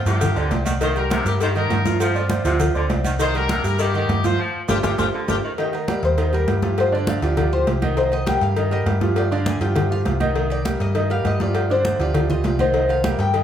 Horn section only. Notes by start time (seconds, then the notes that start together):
0.07 A#3 G4
0.82 D#4 C5
0.97 D4 A#4
1.12 D#4 A#4
1.27 A#3 G4
1.42 D#4 C5
1.57 D4 A#4
2.01 C4 F4
2.31 C4 F4
3.21 D#4 C5
3.35 D4 A#4
3.65 D4 A#4
3.80 A#3 G4
3.96 A#3 G4
4.25 F4 C5
4.69 D4 F4 G4
4.84 D4 F4 G4
4.99 D4 F4 G4
5.29 D4 F4 G4